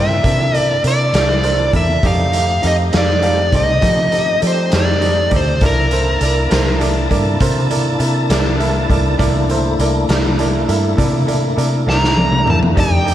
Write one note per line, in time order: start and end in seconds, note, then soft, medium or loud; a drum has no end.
0.00 0.22 G2 medium
0.00 2.00 A#3 medium
0.00 2.00 D4 medium
0.00 0.16 E4 medium
0.00 2.00 E4 medium
0.00 0.16 A4 soft
0.00 2.00 A4 medium
0.00 0.16 A#4 soft
0.00 0.17 C5 medium
0.00 0.58 E5 medium
0.22 0.80 C3 medium
0.22 0.46 E4 soft
0.22 0.46 A4 soft
0.22 0.46 A#4 soft
0.22 0.46 D5 medium
0.22 kick loud
0.22 closed hi-hat medium
0.51 0.75 E4 soft
0.51 0.75 A4 soft
0.51 0.76 A#4 soft
0.51 0.76 D5 soft
0.51 closed hi-hat soft
0.58 0.82 D5 medium
0.83 1.11 C3 medium
0.83 1.06 E4 soft
0.83 1.06 A4 soft
0.83 1.06 A#4 soft
0.83 1.07 D5 soft
0.83 closed hi-hat medium
0.87 1.71 D5 medium
1.14 1.69 C2 medium
1.14 1.36 E4 soft
1.14 1.36 A4 soft
1.14 1.36 A#4 soft
1.14 1.37 D5 medium
1.14 snare medium
1.14 closed hi-hat medium
1.43 1.66 E4 soft
1.43 1.66 A4 soft
1.43 1.66 A#4 soft
1.43 1.66 C5 medium
1.43 closed hi-hat medium
1.73 2.01 E2 medium
1.73 1.95 E4 soft
1.73 1.96 A4 soft
1.73 1.96 A#4 soft
1.73 1.96 D5 medium
1.73 2.06 E5 medium
1.73 kick medium
1.73 closed hi-hat medium
2.03 2.59 F2 medium
2.03 5.58 A3 medium
2.03 5.58 C4 medium
2.03 2.26 D#4 medium
2.03 5.58 D#4 medium
2.03 2.26 G4 medium
2.03 5.58 G4 medium
2.03 2.26 A4 medium
2.03 2.27 D5 medium
2.03 2.66 F5 medium
2.03 kick medium
2.03 closed hi-hat medium
2.32 2.55 D#4 soft
2.32 2.55 G4 soft
2.32 2.55 A4 soft
2.32 2.56 F5 soft
2.32 closed hi-hat medium
2.62 2.91 F2 medium
2.62 2.85 D#4 medium
2.62 2.85 G4 soft
2.62 2.86 A4 soft
2.62 2.86 F5 soft
2.62 closed hi-hat soft
2.67 2.75 D#5 medium
2.92 3.49 F2 medium
2.92 3.15 D#4 soft
2.92 3.15 G4 soft
2.92 3.15 A4 soft
2.92 3.16 F5 medium
2.92 snare medium
2.92 closed hi-hat medium
2.97 3.56 D5 medium
3.22 3.45 D#4 medium
3.22 3.45 G4 soft
3.22 3.45 A4 medium
3.22 3.45 F5 medium
3.22 closed hi-hat soft
3.52 3.80 C2 medium
3.52 3.75 D#4 soft
3.52 3.75 G4 soft
3.52 3.76 A4 soft
3.52 3.76 C5 medium
3.52 4.40 D#5 medium
3.52 kick medium
3.52 closed hi-hat medium
3.82 4.38 F3 medium
3.82 4.04 D#4 medium
3.82 4.05 G4 soft
3.82 4.05 A4 soft
3.82 4.05 D#5 medium
3.82 kick medium
3.82 closed hi-hat medium
4.10 4.34 D#4 soft
4.10 4.34 G4 soft
4.10 4.34 A4 soft
4.10 4.35 D#5 soft
4.10 closed hi-hat soft
4.41 4.70 F3 medium
4.41 4.64 D#4 soft
4.41 4.64 G4 soft
4.41 4.64 A4 soft
4.41 4.65 D5 medium
4.41 closed hi-hat soft
4.47 4.75 C5 medium
4.72 5.28 F2 medium
4.72 4.94 D#4 soft
4.72 4.94 G4 soft
4.72 4.95 A4 soft
4.72 4.95 D5 medium
4.72 snare loud
4.72 closed hi-hat medium
4.77 5.30 D5 medium
5.01 5.24 D#4 soft
5.01 5.24 G4 soft
5.01 5.24 A4 soft
5.01 5.25 D#5 soft
5.01 closed hi-hat soft
5.30 5.59 D2 medium
5.30 5.53 D#4 medium
5.30 5.54 G4 soft
5.30 5.54 A4 soft
5.30 5.54 D5 medium
5.30 kick medium
5.30 closed hi-hat medium
5.36 5.62 C5 medium
5.61 6.17 C2 medium
5.61 9.16 A#3 medium
5.61 9.16 D4 medium
5.61 5.84 E4 medium
5.61 9.16 E4 medium
5.61 5.84 A4 medium
5.61 5.84 A#4 medium
5.61 5.85 D5 medium
5.61 9.16 A5 medium
5.61 kick medium
5.61 closed hi-hat medium
5.66 6.79 A#4 medium
5.91 6.13 E4 medium
5.91 6.14 A4 soft
5.91 6.14 A#4 soft
5.91 6.14 C5 medium
5.91 closed hi-hat soft
6.20 6.48 C2 medium
6.20 6.43 E4 soft
6.20 6.43 A4 soft
6.20 6.44 A#4 soft
6.20 6.44 D5 medium
6.20 closed hi-hat medium
6.49 7.07 C2 medium
6.49 6.72 E4 medium
6.49 6.73 A4 medium
6.49 6.73 A#4 soft
6.49 6.73 C5 medium
6.49 snare loud
6.49 closed hi-hat medium
6.80 7.03 E4 medium
6.80 7.03 A4 medium
6.80 7.03 A#4 medium
6.80 7.03 D5 medium
6.80 closed hi-hat medium
7.09 7.38 G2 medium
7.09 7.32 E4 medium
7.09 7.32 A4 medium
7.09 7.33 A#4 medium
7.09 7.33 D5 medium
7.09 kick medium
7.09 closed hi-hat medium
7.40 7.96 C3 medium
7.40 7.62 E4 medium
7.40 7.63 A4 medium
7.40 7.63 A#4 medium
7.40 7.63 C5 medium
7.40 kick medium
7.40 closed hi-hat medium
7.69 7.92 E4 medium
7.69 7.92 A4 soft
7.69 7.93 A#4 medium
7.69 7.93 D5 medium
7.69 closed hi-hat medium
7.98 8.27 C3 medium
7.98 8.21 E4 medium
7.98 8.22 A4 soft
7.98 8.22 A#4 soft
7.98 8.22 E5 medium
7.98 closed hi-hat medium
8.29 8.85 C2 medium
8.29 8.52 E4 medium
8.29 8.52 A4 medium
8.29 8.52 A#4 medium
8.29 8.52 D5 medium
8.29 snare loud
8.29 closed hi-hat medium
8.58 8.81 E4 medium
8.58 8.82 A4 medium
8.58 8.82 A#4 medium
8.58 8.82 E5 medium
8.58 closed hi-hat medium
8.89 9.17 C2 medium
8.89 9.12 E4 medium
8.89 9.12 A4 medium
8.89 9.12 A#4 medium
8.89 9.12 D5 medium
8.89 kick medium
8.89 closed hi-hat medium
9.18 9.75 C2 medium
9.18 12.74 A3 medium
9.18 12.73 A#3 soft
9.18 12.73 D4 medium
9.18 9.41 E4 medium
9.18 12.73 E4 medium
9.18 9.41 A4 medium
9.18 9.42 A#4 medium
9.18 9.42 D5 medium
9.18 kick medium
9.18 closed hi-hat medium
9.49 9.71 E4 medium
9.49 9.72 A4 soft
9.49 9.72 A#4 soft
9.49 9.72 C5 medium
9.49 closed hi-hat soft
9.79 10.06 C2 medium
9.79 10.01 E4 medium
9.79 10.02 A4 medium
9.79 10.02 A#4 medium
9.79 10.02 D5 medium
9.79 closed hi-hat medium
10.09 10.64 C2 medium
10.09 10.31 E4 medium
10.09 10.31 A4 soft
10.09 10.32 A#4 soft
10.09 10.32 D5 medium
10.09 snare loud
10.09 closed hi-hat medium
10.38 10.61 E4 medium
10.38 10.61 A4 medium
10.38 10.62 A#4 medium
10.38 10.62 D5 medium
10.38 closed hi-hat medium
10.68 10.96 G2 medium
10.68 10.91 E4 medium
10.68 10.91 A4 medium
10.68 10.91 A#4 medium
10.68 10.92 E5 medium
10.68 closed hi-hat medium
10.97 11.54 C3 medium
10.97 11.20 E4 medium
10.97 11.20 A4 medium
10.97 11.21 A#4 medium
10.97 11.21 D5 medium
10.97 kick medium
10.97 closed hi-hat medium
11.27 11.50 E4 medium
11.27 11.50 A4 medium
11.27 11.50 A#4 soft
11.27 11.50 D5 medium
11.27 closed hi-hat soft
11.56 11.85 C3 medium
11.56 11.79 E4 medium
11.56 11.80 A4 medium
11.56 11.80 A#4 medium
11.56 11.80 D5 medium
11.56 closed hi-hat soft
11.86 12.43 C2 medium
11.86 12.09 E4 soft
11.86 12.09 A4 soft
11.86 12.10 A#4 soft
11.86 12.10 D5 medium
11.86 12.50 A#5 loud
11.86 snare medium
12.04 snare medium
12.16 12.39 E4 soft
12.16 12.39 A4 soft
12.16 12.40 A#4 soft
12.16 12.40 D5 medium
12.16 high tom medium
12.32 mid tom medium
12.44 12.74 E2 medium
12.44 12.68 E4 soft
12.44 12.68 A4 soft
12.44 12.69 A#4 soft
12.44 12.69 D5 medium
12.44 mid tom medium
12.50 12.58 A5 medium
12.63 floor tom medium
12.75 13.14 F2 medium
12.75 13.14 A3 medium
12.75 13.14 D4 medium
12.75 12.98 D#4 medium
12.75 13.14 D#4 medium
12.75 12.99 G4 medium
12.75 13.14 G4 medium
12.75 12.99 A4 soft
12.75 12.99 D5 medium
12.75 kick medium
12.75 closed hi-hat medium
12.80 13.14 G5 medium
13.05 13.14 D#4 soft
13.05 13.14 G4 soft
13.05 13.14 A4 soft
13.05 13.14 D5 medium
13.05 closed hi-hat medium